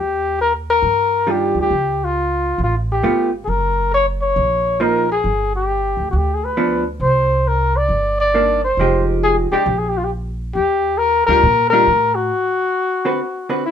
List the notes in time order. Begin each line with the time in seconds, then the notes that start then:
Already playing: D#2 G4
0.41 A#4
0.70 A#4
0.82 G2
1.27 D#3 G3 D4 F4 G4
1.54 D2
1.61 G4
1.71 C#2
2.04 F4
2.58 A1
2.63 F4
2.92 G4
3.03 G1 A3 B3 F4
3.45 F#1 G#4
3.49 A#4
3.94 C#5
4.22 C#5
4.36 A#1
4.80 F3 A#3 D#4 A#4
5.12 G#4
5.24 G1
5.56 G4
5.97 D2
6.11 D2 F#4
6.16 G4
6.34 G#4
6.44 B4
6.57 F3 B3 D4
7.00 C2 C5
7.48 A#4
7.77 D5
7.89 G1
8.20 D5
8.34 D#3 A#3 D4
8.64 C5
8.77 F1 F3 G#3 D#4 G4
9.23 G#4
9.51 G#3 D4 G4, muted upright bass stroke
9.66 A#1
9.78 G#4
9.89 G4
9.97 F4
10.04 G4
10.55 D#2 G4
10.98 A#4
11.26 D2 D#3 G3 D4 F4 A#4
11.43 A#2
11.70 D#3 G3 D4 F4 A#4
11.87 A2
12.15 F#4
13.05 D3 C4 F#4 B4
13.49 D3 C4 F#4 B4
13.66 E4